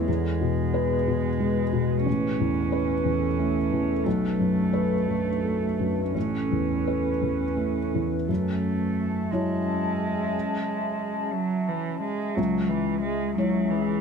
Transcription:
Already playing: felt piano E2, analog synth pad B3
0.07 felt piano E2, cello G#3, analog synth pad G#4 B4
0.41 felt piano B2
0.74 felt piano B4
1.08 felt piano B2
1.40 felt piano G#3
1.73 felt piano B2
2.06 felt piano A1, cello C#4, analog synth pad C#4 A4
2.40 felt piano E2
2.72 felt piano B4
3.05 felt piano E2
3.39 felt piano A3
3.72 felt piano E2
4.04 felt piano B1, cello A3, analog synth pad D4
4.39 felt piano F#2
4.73 felt piano B4
5.08 felt piano F#2
5.44 felt piano A3
5.79 felt piano F#2
6.14 felt piano A1, cello C#4, analog synth pad C#4 B4
6.52 felt piano E2
6.87 felt piano B4
7.22 felt piano E2
7.56 felt piano A3
7.95 felt piano E2
8.28 felt piano F#2, cello A3, analog synth pad C#4 E5 A5
9.31 felt piano F#3 E4 C#5, cello G#3
11.33 cello F#3
11.68 cello E3
12.02 cello G#3
12.36 felt piano C#2, cello F#3, analog synth pad C#4 G#4 E5
12.69 cello E3
13.02 cello G#3
13.36 cello F#3, felt piano G#3 E4 C#5
13.70 cello E3

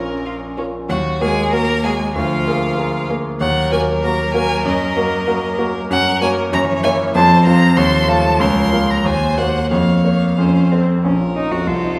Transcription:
Already playing: grand piano A#1 C#4 F4 A#4, violin C#4 A#4, cello C#4
0.25 violin F4
0.57 grand piano C#4 F4 A#4, violin C#4
0.89 grand piano D#2, cello F#3, violin F#4 F#5
1.21 cello G#3, grand piano A#3 F#4 A#4, violin G#4 G#5
1.52 grand piano A#3 F#4 A#4, cello A#3, violin A#4 A#5
1.84 cello G#3, grand piano A#3 F#4 A#4, violin G#4 G#5
2.15 grand piano D2, cello F3, violin F4 F5
2.47 grand piano A#3 G#4 A#4
2.78 grand piano A#3 G#4 A#4
3.09 grand piano A#3 G#4 A#4
3.41 grand piano D#2, cello F#3, violin A#4 F#5
3.72 grand piano A#3 F#4 A#4, violin G#5
4.03 grand piano A#3 F#4 A#4, violin A#5
4.34 grand piano A#3 F#4 A#4, violin G#5
4.65 grand piano F#2, violin D#5
4.96 grand piano A#3 F#4 A#4
5.27 grand piano A#3 F#4 A#4
5.58 grand piano A#3 F#4 A#4
5.89 grand piano F#2, cello F#3, violin A#4 F#5
6.21 grand piano A#3 F#4 C#5, violin G#5
6.51 grand piano F#2, cello E3, violin C#5 A#5
6.83 grand piano A#3 E4 C#5, violin G#5
7.14 grand piano F2, cello F3, violin C5 A5
7.46 grand piano C4 F4 F5, violin A#5
7.77 grand piano D#2, violin A4 C6
8.08 grand piano A3 F4 F5, violin A5
8.40 grand piano C#2, violin A#4 C6
8.72 grand piano A#3 F4 F5
8.91 violin A#5
9.04 grand piano D#2, cello A#3, violin C5 G#5
9.37 grand piano A#3 F#4 C5, violin F#5
9.71 grand piano F2, violin C#5 F5
10.04 grand piano A#3 A#4 C#5
10.38 grand piano F2, cello C#4, violin C5
10.72 cello C4, grand piano C4 A4 C5
11.04 grand piano A#1, cello C#4, violin A#4 C#5
11.19 grand piano F4
11.35 grand piano C#4, cello D#4
11.51 grand piano F2, cello F#4
11.67 grand piano C2, cello F4, violin A4 C5
11.83 grand piano D#4

